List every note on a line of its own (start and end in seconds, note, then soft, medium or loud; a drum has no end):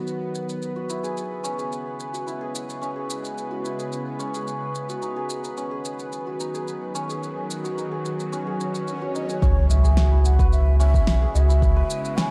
0.00 0.62 D#3 medium
0.00 0.62 F#3 medium
0.00 12.31 B3 medium
0.00 1.73 F#4 medium
0.00 9.44 F#4 medium
0.00 12.31 B4 medium
0.07 shaker soft
0.35 shaker medium
0.49 shaker soft
0.62 5.02 C#3 medium
0.62 shaker soft
0.76 2.13 F#4 medium
0.81 5.02 G#3 medium
0.89 2.26 E4 medium
0.89 shaker medium
1.03 1.58 G#4 medium
1.03 shaker soft
1.15 5.02 E4 medium
1.15 shaker soft
1.44 2.81 C#4 medium
1.44 shaker medium
1.58 2.41 G#4 medium
1.58 shaker soft
1.72 shaker soft
2.00 shaker medium
2.13 3.50 F#4 medium
2.13 shaker soft
2.26 3.64 E4 medium
2.26 shaker soft
2.41 2.95 G#4 medium
2.55 shaker medium
2.70 shaker soft
2.82 4.19 C#4 medium
2.82 shaker soft
2.96 3.78 G#4 medium
3.10 shaker medium
3.25 shaker soft
3.38 shaker soft
3.51 4.89 F#4 medium
3.64 5.08 E4 medium
3.64 shaker medium
3.79 4.33 G#4 medium
3.79 shaker soft
3.92 shaker soft
4.19 5.57 C#4 medium
4.19 shaker medium
4.34 5.16 G#4 medium
4.34 shaker soft
4.47 shaker soft
4.75 shaker medium
4.89 6.26 F#4 medium
4.89 shaker soft
5.01 9.42 D#3 medium
5.01 6.40 D#4 medium
5.01 shaker soft
5.16 5.71 G#4 medium
5.30 9.42 F#3 medium
5.30 shaker medium
5.44 shaker soft
5.57 6.94 C#4 medium
5.57 shaker soft
5.71 6.54 G#4 medium
5.85 shaker medium
5.94 11.14 F#4 medium
5.99 shaker soft
6.13 shaker soft
6.27 7.64 F#4 medium
6.40 7.77 D#4 medium
6.40 shaker medium
6.54 7.09 G#4 medium
6.54 shaker soft
6.68 shaker soft
6.95 8.32 C#4 loud
6.95 shaker medium
7.09 7.91 G#4 medium
7.09 shaker soft
7.23 shaker soft
7.51 shaker medium
7.64 9.01 F#4 medium
7.64 shaker soft
7.77 9.14 D#4 medium
7.77 shaker soft
7.92 8.46 G#4 medium
8.05 shaker medium
8.20 shaker soft
8.32 9.42 C#4 medium
8.32 swell medium
8.32 shaker soft
8.47 9.29 G#4 medium
8.60 shaker medium
8.75 shaker soft
8.88 shaker soft
9.02 9.97 F#4 medium
9.14 10.18 D#4 medium
9.14 9.40 D#5 medium
9.14 shaker medium
9.29 9.84 G#4 medium
9.29 shaker soft
9.42 11.00 C#2 loud
9.42 12.31 C#3 medium
9.42 10.79 C#4 loud
9.42 9.68 C#5 medium
9.42 kick loud
9.42 impact medium
9.42 shaker soft
9.61 12.31 G#3 medium
9.70 10.21 E5 medium
9.70 shaker medium
9.76 12.31 E4 loud
9.84 11.21 G#4 medium
9.84 shaker soft
9.97 11.34 F#4 medium
9.97 snare loud
9.97 shaker soft
10.12 11.48 E4 medium
10.24 10.50 F#5 medium
10.24 shaker medium
10.39 11.76 B4 loud
10.39 kick loud
10.39 shaker soft
10.52 10.78 E5 loud
10.52 shaker soft
10.79 12.16 C#4 loud
10.79 11.31 E5 loud
10.79 shaker medium
10.94 kick loud
10.94 shaker soft
11.07 11.25 B1 medium
11.07 snare loud
11.07 shaker soft
11.22 12.31 G#4 medium
11.33 11.83 C#2 loud
11.33 12.31 F#4 medium
11.33 12.18 E5 loud
11.33 shaker medium
11.49 12.31 E4 medium
11.49 shaker soft
11.62 kick loud
11.62 shaker soft
11.76 12.31 B4 loud
11.90 shaker medium
12.05 shaker soft
12.17 12.31 C#4 medium
12.17 12.31 G#5 loud
12.17 snare loud
12.17 shaker soft